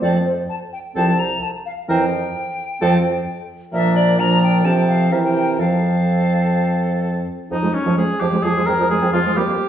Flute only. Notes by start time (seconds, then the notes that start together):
0.01 D5
0.26 C5
0.49 A5
0.73 G5
0.95 A5
1.19 A#5
1.42 A5
1.66 F5
1.88 G5
3.73 E5
3.96 D5
4.19 A#5
4.43 G5
4.65 A5
4.77 G5
4.89 F5
5.12 E5
5.24 G5
5.60 F5
7.51 F4
7.63 G#4
7.86 F4
7.98 G#4
8.21 F4
8.33 G#4
8.44 F4
8.56 G#4
8.67 C5
8.80 F4
8.91 G#4
9.03 C5
9.14 F4
9.26 G#4
9.37 A#4
9.49 C5